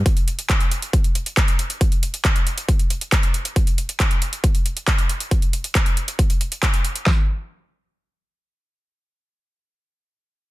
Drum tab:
HH |xxxxxxxxxxxxxxxx|xxxxxxxxxxxxxxxx|xxxxxxxxxxxxxxxx|xxxxxxxxxxxxxxxx|
CP |----x-------x---|----x-------x---|----x-------x---|----x-------x---|
SD |----------------|----------------|----------------|----------------|
BD |o---o---o---o---|o---o---o---o---|o---o---o---o---|o---o---o---o---|

HH |----------------|----------------|
CP |x---------------|----------------|
SD |o---------------|----------------|
BD |o---------------|----------------|